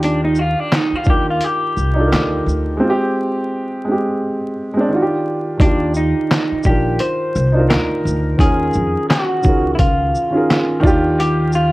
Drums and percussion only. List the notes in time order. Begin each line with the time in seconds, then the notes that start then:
0.03 closed hi-hat
0.35 shaker
0.72 snare, clap, closed hi-hat
1.04 kick, shaker
1.41 closed hi-hat
1.77 shaker
2.13 snare, clap, closed hi-hat
2.48 shaker
5.60 kick, closed hi-hat
5.94 shaker
6.31 snare, clap, closed hi-hat
6.63 kick, shaker
6.99 closed hi-hat
7.35 shaker
7.71 snare, clap, closed hi-hat
8.07 shaker
8.39 kick, closed hi-hat
8.73 shaker
9.10 snare, clap, closed hi-hat
9.43 kick, shaker
9.79 kick, closed hi-hat
10.15 shaker
10.51 snare, clap, closed hi-hat
10.83 kick, shaker
11.20 closed hi-hat
11.52 shaker